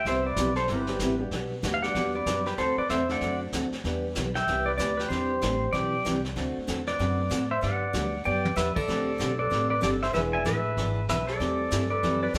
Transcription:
0.05 C2 C3 G3 B3 E4 G4 C5 E5, brush sweep, kick, snare
0.26 B4 D5
0.36 B1 C3 G3 B3 E4 G4, kick, snare, hi-hat pedal
0.55 A4 C5, snare
0.68 G1 C3 G3 B3 E4 G4 B4, brush sweep, kick, snare
0.72 G4
0.87 G3 B3 C4 E4 G4, snare
0.99 A1 C3 G3 B3 E4 G4, kick, snare, hi-hat pedal
1.18 G3 B3 D4 F#4 G4
1.31 B1 B2 G3 B3 D4 F#4, brush sweep, kick, snare
1.62 D2 B2 G3 B3 D4 F#4, kick, snare, hi-hat pedal
1.74 F5
1.82 G3 B3 D4 F#4 G4 D5 F#5, snare
1.95 E2 B2 G3 B3 D4 F#4, brush sweep, kick, snare
2.15 B4 D5
2.26 F#2 B2 G3 B3 D4 F#4 G4, kick, snare, hi-hat pedal
2.46 G4 B4, snare
2.58 D2 D3 A3 C4 F#4 A4 C5, brush sweep, kick, snare
2.77 B4 D5, muted upright bass stroke
2.89 E2 D3 A3 C4 F#4 A4 C5 E5, kick, snare, hi-hat pedal
3.08 A3 C4 D4 F#4 A4 D5 F#5, snare
3.21 F#2 D3 A3 C4 F#4 A4, brush sweep, kick, snare
3.52 D2 D3 A3 C4 D4 F#4 A4, kick, snare, hi-hat pedal
3.71 muted upright bass stroke, snare
3.84 E2 E3 G3 B3 D4 E4 G4, brush sweep, kick, snare
4.15 B1 E3 B3 D4 G4, kick, snare, hi-hat pedal
4.35 E5 G5, snare
4.47 C2 E3 B3 D4 G4, brush sweep, kick, snare
4.66 B4 D5
4.78 D2 E3 B3 D4 G4 B4 D5, kick, snare, hi-hat pedal
4.97 G4 B4, snare
5.09 E2 E3 G3 C4 D4 E4 G4 C5, brush sweep, kick, snare
5.42 A1 E3 C4 D4 G4, kick, snare, hi-hat pedal
5.73 B1 E3 C4 D4 G4 D5, brush sweep, kick, snare
6.05 C2 E3 C4 D4 G4, kick, snare, hi-hat pedal
6.24 snare
6.36 D2 D3 A3 C4 D4 F#4 A4, brush sweep, kick, snare
6.58 muted upright bass stroke
6.67 E2 D3 A3 C4 F#4 A4, kick, snare, hi-hat pedal
6.87 B4 D5, snare
6.99 F#2 D3 A3 C4 F#4 A4, brush sweep, kick, snare
7.30 A2 D3 A3 C4 F#4 A4, kick, snare, hi-hat pedal
7.51 C5 E5
7.61 G2 D3 F#3 B3 D4 G4 D5 F#5, brush sweep, kick, snare
7.93 D2 D3 F#3 G3 B3 D4 F#4 G4, kick, snare, hi-hat pedal
8.24 F#2 D3 F#3 B3 D4 G4 D5 G5
8.45 high tom
8.56 E2 D3 F#3 B3 D4 G4 B4 E5, snare, hi-hat pedal
8.76 A4 D5, muted upright bass stroke, kick, crash
8.88 D2 D3 G3 A3 C4 D4 G4 A4, brush sweep, kick, snare
9.18 B1 D3 G3 C4 D4 G4, kick, snare, hi-hat pedal
9.39 A4 B4 D5
9.50 A1 D3 G3 C4 D4 G4, brush sweep, kick, snare
9.70 B4 D5
9.81 G1 D3 G3 C4 D4 G4 A4 D5, kick, snare, hi-hat pedal
10.02 C5 E5, snare
10.13 E1 E3 G#3 B3 D4 E4 G#4 B4 E5, brush sweep, kick, snare
10.33 D5 E5 G#5
10.45 A1 E3 B3 D4 G#4 B4 E5, kick, snare, hi-hat pedal
10.77 G#1 E3 B3 D4 G#4, brush sweep, kick, snare
11.08 B1 E3 B3 D4 G#4 B4 E5, kick, snare, hi-hat pedal
11.27 A4 D5, snare
11.40 E2 E3 G3 A3 C4 E4 G4 A4, brush sweep, kick, snare
11.71 G2 E3 G3 C4 E4 A4, kick, snare, hi-hat pedal
11.90 A4 B4 D5
12.03 F#2 E3 G3 C4 E4 A4, brush sweep, kick, snare
12.22 B4 D5
12.34 E2 E3 G3 C4 E4, kick, snare, hi-hat pedal

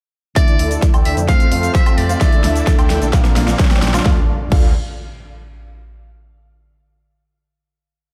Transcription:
0.35 D3 A3 D4 E4 A4 D5 E5, kick, snare, closed hi-hat, riser, shaker
0.48 closed hi-hat, shaker
0.59 D2 A3 D4 E4 D5 E5, open hi-hat
0.71 closed hi-hat, shaker
0.82 kick, snare, closed hi-hat, shaker
0.94 D2 A3 D4 E4 D5 G5, closed hi-hat, high woodblock, shaker
1.05 D2 E5, open hi-hat
1.17 F2, closed hi-hat, shaker
1.27 A3 C4 F4 A4 C5 F5, kick, snare, closed hi-hat, shaker
1.40 closed hi-hat, shaker
1.52 F2 A3 C4 F4 C5 F5, open hi-hat
1.63 closed hi-hat, shaker
1.75 E5, kick, snare, closed hi-hat, shaker
1.86 A3 C4 F4 C5 G5, closed hi-hat, high woodblock, shaker
1.98 F2 D5, open hi-hat
2.09 A3 C4 F4 C5 F5, closed hi-hat, shaker
2.20 D3 A3 D4 E4 A4 D5 E5, kick, snare, closed hi-hat, shaker
2.32 closed hi-hat, shaker
2.44 D2 A3 D4 E4 D5 E5, snare, open hi-hat
2.56 closed hi-hat, shaker
2.67 kick, snare, closed hi-hat, shaker
2.79 D2 A3 D4 E4 D5 G5, closed hi-hat, high woodblock, shaker
2.90 D2, snare, open hi-hat
3.02 A#1, closed hi-hat, shaker
3.12 A#2 F3 A#3 D4 F4 A#4 D5 F5, kick, snare, closed hi-hat, shaker
3.25 snare, closed hi-hat, shaker
3.36 A#1 A#3 D4 F4 D5 F5, snare, open hi-hat
3.48 snare, closed hi-hat, shaker
3.59 kick, snare, closed hi-hat, shaker
3.65 snare
3.71 A#3 D4 F4 D5 G5, snare, closed hi-hat, shaker
3.77 snare
3.82 A#1, snare, open hi-hat
3.88 snare
3.94 A#3 D4 F4 D5 F5, snare, closed hi-hat, high woodblock, shaker
4.00 snare
4.04 D2 D3 A3 D4 F4 A4 D5 F5, kick, snare, impact
4.50 D2 A3 D4 F4 A4 D5 F5, kick, crash

